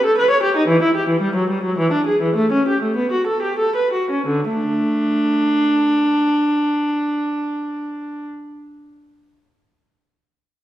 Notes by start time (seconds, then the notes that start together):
0.05 A4
0.18 B4
0.31 C#5
0.43 G4
0.56 D#4
0.68 E3
0.82 E4
0.96 G4
1.09 E3
1.21 G3
1.35 F#3
1.50 G3
1.63 F#3
1.78 E3
1.92 D4
2.06 G#4
2.22 E3
2.36 A3
2.52 C#4
2.68 G4
2.82 A3
2.96 B3
3.11 F#4
3.27 A4
3.42 G4
3.58 A4
3.75 B4
3.93 F#4
4.10 C#4
4.26 D3
4.48 A3 D4